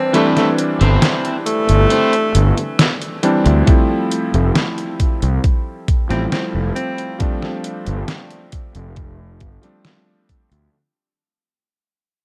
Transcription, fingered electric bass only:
0.81 0.96 G1 loud
1.69 1.85 G1 medium
2.35 2.51 G1 medium
3.46 3.61 D2 loud
4.34 4.49 F1 loud
5.22 5.38 C2 medium
6.10 6.26 A1 medium
6.54 6.70 F1 medium
7.87 8.02 G1 medium
8.75 9.41 F1 medium
9.41 9.57 G1 medium
10.51 10.67 D2 medium

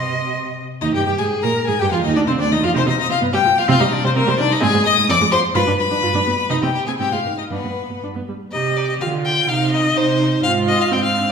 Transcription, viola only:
0.00 0.58 D#5 medium
0.82 0.94 D#4 medium
0.95 1.06 G4 medium
1.07 1.12 G4 medium
1.20 1.45 G#4 medium
1.43 1.67 A#4 medium
1.68 1.73 G#4 medium
1.81 1.85 G4 loud
1.93 2.04 F4 medium
2.05 2.18 D#4 medium
2.16 2.28 D4 medium
2.29 2.39 C4 loud
2.40 2.45 D4 medium
2.52 2.57 D#4 loud
2.63 2.68 F4 loud
2.74 2.79 D#4 medium
2.86 2.91 C4 medium
3.09 3.14 C4 medium
3.21 3.26 B3 loud
3.33 3.38 G3 medium
3.45 3.49 F3 medium
3.68 3.73 C4 loud
3.81 3.85 G3 medium
4.04 4.08 G3 medium
4.16 4.20 C4 loud
4.27 4.31 G3 medium
4.38 4.43 D#3 loud
4.61 4.66 C4 loud
4.73 4.78 G#3 medium
4.97 5.02 G#3 medium
5.08 5.13 C4 loud
5.21 5.26 G#3 medium
5.32 5.36 F3 medium
5.55 5.60 F4 loud
5.67 5.72 D4 medium
5.91 5.96 D4 medium
6.02 6.07 F4 medium
6.14 6.19 D4 medium
6.27 6.31 B3 medium
6.50 6.55 D#4 medium
6.63 6.67 C4 medium
6.88 6.93 C4 medium
7.00 7.05 C4 medium
7.13 7.18 G#3 medium
7.26 7.31 D#3 medium
7.52 7.57 D4 medium
7.65 7.70 B3 soft
7.90 7.95 B3 soft
8.03 8.08 D4 medium
8.15 8.20 B3 medium
8.29 8.34 G3 medium
8.54 9.03 G4 medium
9.02 9.51 F4 medium
9.49 10.43 D#4 medium
10.44 10.93 F4 loud
10.91 11.32 C4 medium

